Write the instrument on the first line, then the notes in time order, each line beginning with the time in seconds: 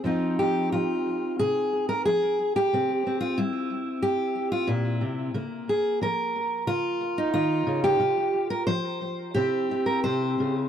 steel-string acoustic guitar
0.04 F2 F3 C4 D#4 F4
0.39 G4
0.72 F3 F4
1.39 C3 G#4
1.89 A#4
2.05 F3 G#4
2.56 G4
2.73 C3 C4
3.07 C4
3.21 F4
3.38 G3 E4
4.02 G2 G4
4.52 F4
4.67 A#2 E4
5.01 C3
5.34 C#3 A#3
5.69 G#4
6.01 F3 A#4
6.67 C#3 F4
7.18 D#4
7.34 D#3 F4
7.67 C#3
7.84 G4
7.99 C3 F4
8.50 A#4
8.67 F3 C5
9.34 C3 C4 E4 G4
9.71 E4
9.86 A#4
10.04 C3 C5
10.40 C#3